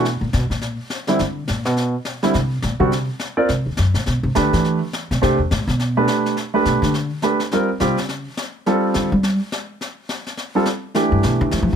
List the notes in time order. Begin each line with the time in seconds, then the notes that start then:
Already playing: B2
0.05 brush sweep, snare
0.21 A#2
0.33 B2, snare
0.50 A#2, snare
0.61 brush sweep, snare
0.90 snare
1.07 D3 G3 C4 E4, snare
1.19 D3, brush sweep, snare
1.48 A#2, snare
1.65 B2, snare
1.77 brush sweep, snare
2.05 snare
2.23 D3 G3 C4 E4, snare
2.34 C3, brush sweep, snare
2.62 A#2, snare
2.80 C3 D3 G3 C4 F#4
2.92 brush sweep, snare
3.20 snare
3.37 C4 F4 A#4 D5
3.49 C3, brush sweep, snare
3.66 D#2
3.77 F#2, snare
3.94 A#2, snare
4.06 B2, brush sweep, snare
4.23 C3
4.35 D3 A3 D4 G4 B4, snare
4.53 E3, snare
4.64 brush sweep, snare
4.93 snare
5.11 B2, snare
5.22 C3 A3 D4 G4 C5, brush sweep, snare
5.39 E2
5.51 A2, snare
5.68 B2, snare
5.80 brush sweep, snare
5.97 A3 D4 G4 B4
6.08 snare
6.26 snare
6.37 brush sweep, snare
6.54 A3 D4 G4 B4
6.65 B2, snare
6.82 D3, snare
6.94 brush sweep, snare
7.22 A3 D4 G4 B4, snare
7.40 snare
7.51 G3 C4 F4 A#4, brush sweep, snare
7.80 C3 G3 C4 F4 G4, snare
7.97 C#3, snare
8.09 brush sweep, snare
8.37 snare
8.66 G3 C4 F4 A4, brush sweep, snare
8.94 D3, snare
9.12 G3
9.23 brush sweep, snare
9.52 snare
9.81 brush sweep, snare
10.09 snare
10.27 snare
10.37 brush sweep, snare
10.55 G3 C4 F4 A4
10.66 snare
10.95 E3 A3 D4 G4, brush sweep, snare
11.12 G2
11.23 B2, snare
11.41 D3
11.51 E3, brush sweep, snare
11.62 F3
11.73 E3